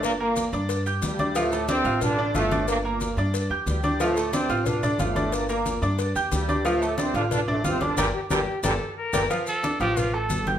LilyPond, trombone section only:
\new Staff \with { instrumentName = "Trombone section" } { \clef bass \time 4/4 \key d \minor \tempo 4 = 181 <bes, bes>8 <bes, bes>4 r4. <g, g>4 | <a, a>4 <c c'>4 <d d'>4 <a, a>4 | <bes, bes>8 <bes, bes>4 r4. <g, g>4 | <a, a>4 <c c'>4 <d d'>4 <a, a>4 |
<bes, bes>8 <bes, bes>4 r4. <g, g>4 | <a, a>4 <c c'>8 <d d'>8 <d d'>8 <a, a>8 <c c'>8 <d d'>8 | <bes, d g>8 r8 <bes, d g>8 r8 <bes, d g>8 r4 <bes, d g>8 | r1 | }